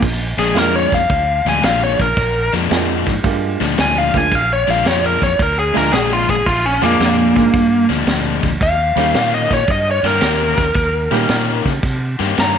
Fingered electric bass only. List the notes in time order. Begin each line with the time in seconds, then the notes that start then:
0.02 A#1
0.37 A#1
0.54 F2
0.92 F2
1.10 D2
1.45 D2
1.62 A#1
1.99 A#1
2.17 A#1
2.53 F2
2.71 F2
3.07 G#2
3.23 G2
3.61 D2
3.79 D2
4.14 D2
4.32 A#1
4.68 A#1
4.85 F2
5.22 F2
5.39 D2
5.76 D2
5.93 A#1
6.29 A#1
6.47 A#1
6.82 F2
7.00 F2
7.36 G#2
7.54 G2
7.89 D2
8.06 D2
8.43 D2
8.61 D#2
8.96 D#2
9.14 A#2
9.51 A#2
9.68 G2
10.03 G2
10.21 D#2
10.58 D#2
10.75 D#2
11.11 A#2
11.29 A#2
11.65 C#3
11.83 C3
12.20 G2
12.38 G2